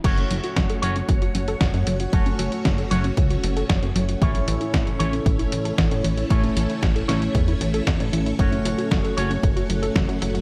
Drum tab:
CC |x---------------|----------------|----------------|----------------|
HH |xxxxxxxxxxxxxxxx|xxxxxxxxxxxxxxxx|xxxxxxxxxxxxxxxx|xxxxxxxxxxxxxxxx|
SD |----o-------o---|----o-------o---|----o-------o---|----o-o-----o---|
BD |o---o---o---o---|o---o---o---o---|o---o---o---o---|o---o---o---o---|

CC |----------------|
HH |xxxxxxxxxxxxxxxx|
SD |----o-------o---|
BD |o---o---o---o---|